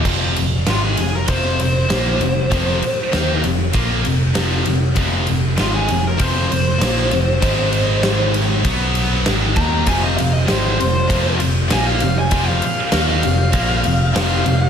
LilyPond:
<<
  \new Staff \with { instrumentName = "Lead electric guitar" } { \time 4/4 \key f \minor \tempo 4 = 98 r4 f'16 aes'8 bes'16 c''8 c''4.~ | c''4. r2 r8 | r4 f'16 aes'8 bes'16 c''8 c''4.~ | c''4. r2 bes''8 |
aes''16 ees''16 f''16 ees''16 c''8 c''4 r8 aes''16 f''8 aes''16~ | aes''16 f''4 f''4.~ f''16 f''4 | }
  \new Staff \with { instrumentName = "Tonewheel organ" } { \clef bass \time 4/4 \key f \minor r1 | r1 | r1 | r1 |
<f g c'>1~ | <f g c'>1 | }
  \new Staff \with { instrumentName = "Distorted electric guitar" } { \clef bass \time 4/4 \key f \minor <f, c f>8 <f, c>8 <aes, ees aes>8 <f, c>8 <f, c f>8 <f, c>8 <bes, f bes>8 <f, c>8 | <f, c f>8 r8 <ees bes ees'>8 <f, c>8 <bes, f bes>8 <f, c>8 <f, c f>8 <f, c>8 | <f, c f>8 <f, c>8 <aes, ees aes>8 <f, c>8 <f, c f>8 <f, c>8 <bes, f bes>8 <f, c>8 | <aes, ees aes>2 <b, fis b>4 <aes, ees aes>8 <ees bes ees'>8 |
<f, c f>8 <f, c>8 <aes, ees aes>8 <f, c>8 <f, c f>8 <f, c>8 <bes, f bes>8 <f, c>8 | <f, c f>8 r8 <ees bes ees'>8 <f, c>8 <bes, f bes>8 <f, c>8 <f, c f>8 <f, c>8 | }
  \new Staff \with { instrumentName = "Distorted electric guitar" } { \clef bass \time 4/4 \key f \minor <f, c f>8 <f, c>8 <aes, ees aes>8 <f, c>8 <f, c f>8 <f, c>8 <bes, f bes>8 <f, c>8 | <f, c f>8 r8 <ees bes ees'>8 <f, c>8 <bes, f bes>8 <f, c>8 <f, c f>8 <f, c>8 | <f, c f>8 <f, c>8 <aes, ees aes>8 <f, c>8 <f, c f>8 <f, c>8 <bes, f bes>8 <f, c>8 | <aes, ees aes>2 <b, fis b>4 <aes, ees aes>8 <ees bes ees'>8 |
<f, c f>8 <f, c>8 <aes, ees aes>8 <f, c>8 <f, c f>8 <f, c>8 <bes, f bes>8 <f, c>8 | <f, c f>8 r8 <ees bes ees'>8 <f, c>8 <bes, f bes>8 <f, c>8 <f, c f>8 <f, c>8 | }
  \new Staff \with { instrumentName = "Picked electric bass" } { \clef bass \time 4/4 \key f \minor f,,8 f,,8 aes,,8 f,,8 f,,8 f,,8 bes,,8 f,,8 | f,,8 r8 ees,8 f,,8 bes,,8 f,,8 f,,8 f,,8 | f,,8 f,,8 aes,,8 f,,8 f,,8 f,,8 bes,,8 f,,8 | aes,,2 b,,4 aes,,8 ees,8 |
f,,8 f,,8 aes,,8 f,,8 f,,8 f,,8 bes,,8 f,,8 | f,,8 r8 ees,8 f,,8 bes,,8 f,,8 f,,8 f,,8 | }
  \new DrumStaff \with { instrumentName = "Drums" } \drummode { \time 4/4 <cymc bd>8 cymr8 <cymr sn>8 cymr8 <bd cymr>8 cymr8 <cymr sn>8 cymr8 | <bd cymr>8 cymr8 <cymr sn>8 cymr8 <bd cymr>8 cymr8 <cymr sn>8 cymr8 | <bd cymr>8 cymr8 <cymr sn>8 cymr8 <bd cymr>8 cymr8 <cymr sn>8 cymr8 | <bd cymr>8 cymr8 <cymr sn>8 cymr8 <bd cymr>8 cymr8 <cymr sn>8 <bd cymr>8 |
<bd cymr>8 cymr8 <cymr sn>8 cymr8 <bd cymr>8 cymr8 <cymr sn>8 cymr8 | <bd cymr>8 cymr8 <cymr sn>8 cymr8 <bd cymr>8 cymr8 <cymr sn>8 cymr8 | }
>>